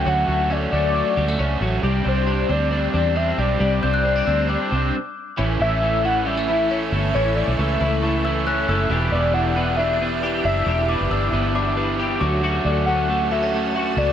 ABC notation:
X:1
M:4/4
L:1/16
Q:1/4=136
K:Amix
V:1 name="Glockenspiel"
z16 | z16 | z2 g' f'3 e'2 d'4 z4 | z16 |
z8 c'2 e'2 f'2 e'2- | e' z12 z3 | z2 d'2 e'4 d'6 d'2- | d' z12 z3 |]
V:2 name="Ambient pad"
z16 | z16 | z16 | [Aec']16- |
[Aec']16 | [Ged']16- | [Ged']12- [Ged']2 [Ffa]2- | [Ffa]16 |]
V:3 name="Soft synth lead"
f4 d2 d8 z2 | z2 =c4 d6 e2 d2- | d12- d2 z2 | z2 e4 f2 e8 |
c2 d2 e8 z4 | z2 d2 f4 e4 z2 e2- | e2 z12 z2 | z2 d2 f4 e4 z2 d2 |]
V:4 name="Overdriven electric guitar"
[D,A,CF]2 [A,CF]2 [D,A,CF]2 [A,CF]2 [D,A,CF]2 [A,CF]2 [D,A,CF]2 [A,CF]2 | [=C,G,=CDG]2 [CDG]2 [G,CDG]2 [CDG]2 [C,G,CDG]2 [CDG]2 [G,CDG]2 [CDG]2 | [=C,G,=CDG]2 [CDG]2 [G,CDG]2 [CDG]2 [C,G,CDG]2 [CDG]2 z4 | [A,,E,A,CE]2 [A,CE]2 [E,A,CE]2 [A,CE]2 [A,,E,A,CE]2 [A,CE]2 [E,A,CE]2 [A,CE]2 |
[A,,E,A,CE]2 [A,CE]2 [E,A,CE]2 [A,CE]2 [A,,E,A,CE]2 [A,CE]2 [E,A,CE]2 [A,CE]2 | [E,,B,,E,G,DE]2 [E,G,DE]2 [E,G,DE]2 [E,G,DE]2 [E,,B,,E,G,DE]2 [E,G,DE]2 [E,G,DE]2 [E,G,DE]2 | [E,,B,,E,G,DE]2 [E,G,DE]2 [E,G,DE]2 [E,G,DE]2 [E,,B,,E,G,DE]2 [E,G,DE]2 [E,G,DE]2 [A,CF]2 | [D,A,CF]2 [A,CF]2 [D,A,CF]2 [A,CF]2 [D,A,CF]2 [A,CF]2 [D,A,CF]2 [A,CF]2 |]
V:5 name="Clean electric guitar"
[F,A,C]2 A,2 C2 A,4 G, A, C2 F,2 | G,2 =C2 D2 C2 D2 C2 D2 G,2 | G,2 =C2 C D C2 D2 C2 z4 | [E,C]2 E,2 A,2 E,2 G, A, E,2 C2 A,2 |
[E,C]2 E,2 A,2 E,2 A,2 E,2 C2 A,2 | [E,G]2 B,2 D2 B,2 D2 B,2 G2 D2 | [E,G]2 B,2 D2 B,2 D2 B,2 G2 F,2 | [F,F]2 A,2 C2 A,2 B, C A,2 F2 B, z |]
V:6 name="Fingered electric bass" clef=bass
D,,2 D,,4 D,,3 z D,,2 C,,2 A,,,2 | =C,,2 C,,4 D,,4 E,,4 B,,,2 | =C,,2 C,,4 D,,3 z C,,2 z4 | A,,,2 A,,,12 G,,,2 |
A,,,3 B,,, C,,2 C,,8 F,,,2 | E,,,2 E,,,12 F,,,2 | E,,,3 F,,, G,,,2 G,,,8 D,,2- | D,,2 D,,12 C,,2 |]